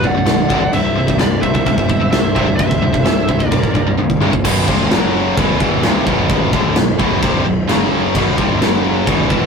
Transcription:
0.04 picked electric bass B0, distorted electric guitar B1 F#2, lead electric guitar D5 F#5, kick
0.17 distorted electric guitar B1 F#2
0.26 picked electric bass B0, distorted electric guitar B1 F#2, snare, china
0.50 picked electric bass C1, distorted electric guitar C2 G2 C3, kick
0.64 distorted electric guitar C2 G2
0.73 picked electric bass C1, distorted electric guitar C2 G2, lead electric guitar C5 E5, china
0.98 distorted electric guitar C2 G2
1.08 distorted electric guitar C2 G2, kick
1.19 picked electric bass C1, distorted electric guitar C2 G2, lead electric guitar G4 D5, snare, china
1.42 picked electric bass C2, distorted electric guitar C2 G2, lead electric guitar C5 E5, kick
1.55 distorted electric guitar C2 G2, kick
1.66 picked electric bass E1, distorted electric guitar C2 G2, kick, china
1.78 kick
1.90 distorted electric guitar C2 G2, kick
2.01 distorted electric guitar C2 G2
2.11 distorted electric guitar C2 G2, picked electric bass C2, lead electric guitar C5 E5, snare, china
2.35 picked electric bass C1, distorted electric guitar C2 G2 C3, kick
2.47 distorted electric guitar C2 G2
2.56 picked electric bass C1, distorted electric guitar C2 G2, lead electric guitar C5 E5, kick, china
2.71 kick
2.82 picked electric bass C1, distorted electric guitar C2 G2
2.94 distorted electric guitar C2 G2, kick
3.05 picked electric bass C1, distorted electric guitar C2 G2, snare, china
3.29 picked electric bass C1, distorted electric guitar C2 G2, kick
3.40 distorted electric guitar C2 G2, kick
3.48 picked electric bass A1, distorted electric guitar C2 G2, lead electric guitar A#4 D5, kick, china
3.63 kick
3.75 picked electric bass C1, distorted electric guitar C2 G2, kick
3.86 distorted electric guitar C2 G2
3.97 picked electric bass C1, distorted electric guitar C2 G2, high tom
4.10 kick
4.21 picked electric bass C1, distorted electric guitar C2 G2 C3, mid tom
4.33 distorted electric guitar C2 G2, kick
4.44 picked electric bass B0, distorted electric guitar B1 F#2 B2, kick, crash
4.68 picked electric bass C1, distorted electric guitar C2 G2 C3, kick
4.91 picked electric bass F#1, distorted electric guitar F#2 C#3 F#3, snare, crash
5.37 picked electric bass B0, distorted electric guitar B1 F#2 B2, kick, crash
5.60 picked electric bass E1, distorted electric guitar E2 B2 E3, kick
5.83 picked electric bass C1, distorted electric guitar C2 G2 C3, snare, crash
6.06 picked electric bass B0, distorted electric guitar B1 F#2 B2, kick
6.29 kick, crash
6.51 picked electric bass D1, distorted electric guitar D2 A2 D3, kick
6.76 picked electric bass B0, distorted electric guitar B1 F#2, snare, crash
6.98 picked electric bass B0, distorted electric guitar B1 F#2 B2, kick
7.22 picked electric bass C1, distorted electric guitar C2 G2 C3, kick, crash
7.45 picked electric bass B0, distorted electric guitar B1 F#2
7.68 picked electric bass F#1, distorted electric guitar F#2 C#3 F#3, snare, crash
8.15 picked electric bass B0, distorted electric guitar B1 F#2 B2, kick, crash
8.37 picked electric bass C1, distorted electric guitar C2 G2 C3, kick
8.60 picked electric bass F#1, distorted electric guitar F#2 C#3 F#3, snare, crash
9.06 picked electric bass B0, distorted electric guitar B1 F#2 B2, kick, crash
9.29 picked electric bass E1, distorted electric guitar E2 B2 E3, kick

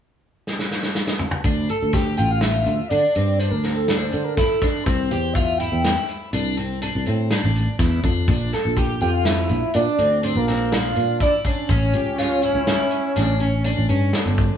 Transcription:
0.47 snare
0.59 snare
0.71 snare
0.83 snare
0.95 snare
1.07 snare
1.19 mid tom
1.31 mid tom
1.44 fretless electric bass D2, twelve-string acoustic guitar D4, kick, closed hi-hat
1.69 twelve-string acoustic guitar A4, closed hi-hat
1.82 fretless electric bass D2
1.93 twelve-string acoustic guitar G4, kick, snare, closed hi-hat
2.17 fretless electric bass A1, twelve-string acoustic guitar F4, analog synth lead G5, closed hi-hat
2.31 analog synth lead F5
2.41 twelve-string acoustic guitar F4, analog synth lead E5, snare, closed hi-hat
2.66 fretless electric bass D2, closed hi-hat
2.89 fretless electric bass D3, twelve-string acoustic guitar D4, analog synth lead D5, closed hi-hat
3.15 fretless electric bass G2, twelve-string acoustic guitar C4, closed hi-hat
3.39 twelve-string acoustic guitar D4, analog synth lead C5, closed hi-hat
3.51 fretless electric bass D2, analog synth lead A#4
3.64 twelve-string acoustic guitar C4, snare, closed hi-hat
3.75 analog synth lead A4
3.88 twelve-string acoustic guitar D4, snare, closed hi-hat
3.98 analog synth lead C5
4.12 fretless electric bass D3, closed hi-hat
4.24 analog synth lead A#4
4.35 twelve-string acoustic guitar E4, analog synth lead A4, kick, snare, closed hi-hat
4.62 twelve-string acoustic guitar D4, kick, snare, closed hi-hat
4.84 fretless electric bass C2, twelve-string acoustic guitar C4, analog synth lead C5, kick, closed hi-hat
5.11 fretless electric bass E2, twelve-string acoustic guitar G4, closed hi-hat
5.33 twelve-string acoustic guitar F4, analog synth lead E5, kick, closed hi-hat
5.58 twelve-string acoustic guitar E4, analog synth lead G5, closed hi-hat
5.72 fretless electric bass E2
5.84 twelve-string acoustic guitar E4, snare, closed hi-hat
6.09 closed hi-hat
6.33 fretless electric bass C2, twelve-string acoustic guitar D4, closed hi-hat
6.57 twelve-string acoustic guitar C4, closed hi-hat
6.82 twelve-string acoustic guitar D4, closed hi-hat
6.95 fretless electric bass C2
7.06 fretless electric bass A2, twelve-string acoustic guitar C4, closed hi-hat
7.31 twelve-string acoustic guitar D4, snare, closed hi-hat
7.44 fretless electric bass A1
7.56 closed hi-hat
7.79 fretless electric bass E2, twelve-string acoustic guitar E4, kick, snare, closed hi-hat
8.04 fretless electric bass F2, twelve-string acoustic guitar D4, kick, closed hi-hat
8.28 fretless electric bass A#1, twelve-string acoustic guitar D4, kick, closed hi-hat
8.53 twelve-string acoustic guitar A4, snare, closed hi-hat
8.65 fretless electric bass A#1
8.76 twelve-string acoustic guitar G4, kick, closed hi-hat
9.01 fretless electric bass F2, twelve-string acoustic guitar F4, trombone G4, analog synth lead G5, closed hi-hat
9.14 trombone F4, analog synth lead F5
9.25 twelve-string acoustic guitar F3, trombone E4, analog synth lead E5, snare, closed hi-hat
9.49 fretless electric bass A#1, closed hi-hat
9.74 fretless electric bass A#2, twelve-string acoustic guitar D4, trombone D4, analog synth lead D5, closed hi-hat
9.98 fretless electric bass D2, twelve-string acoustic guitar C4, closed hi-hat
10.23 trombone C4, twelve-string acoustic guitar D4, analog synth lead C5, closed hi-hat
10.35 fretless electric bass A#1, trombone A#3, analog synth lead A#4
10.48 twelve-string acoustic guitar C4, snare, closed hi-hat
10.72 twelve-string acoustic guitar D4, trombone F4, analog synth lead F5, snare, closed hi-hat
10.96 fretless electric bass A#2, closed hi-hat
11.20 trombone D4, twelve-string acoustic guitar E4, analog synth lead D5, kick, closed hi-hat
11.44 trombone C#4, twelve-string acoustic guitar D4, analog synth lead C#5, kick, closed hi-hat
11.69 fretless electric bass A1, twelve-string acoustic guitar C#4, kick, closed hi-hat
11.93 fretless electric bass C#2, twelve-string acoustic guitar G4, closed hi-hat
12.18 twelve-string acoustic guitar F4, snare, closed hi-hat
12.42 twelve-string acoustic guitar E4, closed hi-hat
12.55 fretless electric bass C#2
12.67 twelve-string acoustic guitar E4, snare, closed hi-hat
12.91 closed hi-hat
13.16 fretless electric bass A1, twelve-string acoustic guitar D4, snare, closed hi-hat
13.40 twelve-string acoustic guitar C#4, closed hi-hat
13.64 twelve-string acoustic guitar D4, closed hi-hat
13.77 fretless electric bass A1
13.89 fretless electric bass G2, twelve-string acoustic guitar C#4, closed hi-hat
14.13 twelve-string acoustic guitar D3, snare, closed hi-hat
14.26 fretless electric bass G1
14.38 kick, closed hi-hat

